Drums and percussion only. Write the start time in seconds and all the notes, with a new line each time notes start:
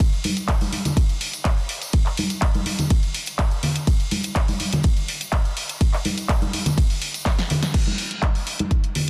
0.00 kick, closed hi-hat, ride
0.13 closed hi-hat, tambourine
0.24 open hi-hat, high conga
0.37 closed hi-hat, tambourine
0.48 kick, clap, closed hi-hat, ride
0.61 open hi-hat, tambourine, high conga
0.73 open hi-hat, high conga
0.85 closed hi-hat, tambourine, low conga
0.97 kick, closed hi-hat, ride, tambourine
1.09 closed hi-hat, tambourine
1.21 open hi-hat
1.33 closed hi-hat, tambourine
1.45 kick, clap, closed hi-hat, ride
1.58 closed hi-hat, tambourine
1.69 open hi-hat
1.82 closed hi-hat, tambourine
1.93 kick, closed hi-hat, ride
2.06 clap, closed hi-hat, tambourine
2.17 open hi-hat, high conga
2.30 closed hi-hat, tambourine
2.42 kick, clap, closed hi-hat, ride
2.55 closed hi-hat, tambourine, high conga
2.66 open hi-hat, high conga
2.79 closed hi-hat, tambourine, low conga
2.90 kick, closed hi-hat, ride, tambourine
3.03 closed hi-hat, tambourine
3.14 open hi-hat
3.26 closed hi-hat, tambourine
3.39 kick, clap, closed hi-hat, ride
3.51 closed hi-hat, tambourine
3.63 open hi-hat, low conga
3.76 closed hi-hat, tambourine
3.87 kick, closed hi-hat, ride, tambourine
4.00 closed hi-hat, tambourine
4.11 open hi-hat, high conga
4.24 closed hi-hat, tambourine
4.35 kick, clap, closed hi-hat, ride, tambourine
4.48 open hi-hat, tambourine, high conga
4.60 open hi-hat, high conga
4.73 closed hi-hat, tambourine, low conga
4.83 kick, closed hi-hat, ride, tambourine
4.97 closed hi-hat, tambourine
5.08 open hi-hat
5.21 closed hi-hat, tambourine
5.33 kick, clap, closed hi-hat, ride
5.45 closed hi-hat, tambourine
5.57 open hi-hat
5.69 closed hi-hat, tambourine
5.81 kick, closed hi-hat, ride
5.93 clap, closed hi-hat, tambourine
6.05 open hi-hat, high conga
6.18 closed hi-hat, tambourine
6.29 kick, clap, closed hi-hat, ride
6.42 closed hi-hat, tambourine, high conga
6.53 open hi-hat, high conga
6.66 closed hi-hat, tambourine, low conga
6.77 kick, closed hi-hat, ride, tambourine
6.90 open hi-hat, tambourine
7.02 open hi-hat
7.14 closed hi-hat, tambourine
7.26 kick, snare, clap, closed hi-hat, ride
7.39 snare, closed hi-hat, tambourine
7.50 open hi-hat, low conga
7.63 snare, closed hi-hat, tambourine
7.74 kick, closed hi-hat, crash
7.87 tambourine, high conga
7.98 open hi-hat
8.11 closed hi-hat, tambourine
8.22 kick, clap, closed hi-hat, tambourine, high conga
8.35 open hi-hat, tambourine
8.47 open hi-hat
8.59 closed hi-hat, tambourine, high conga
8.71 kick, closed hi-hat
8.82 closed hi-hat, tambourine
8.95 open hi-hat, low conga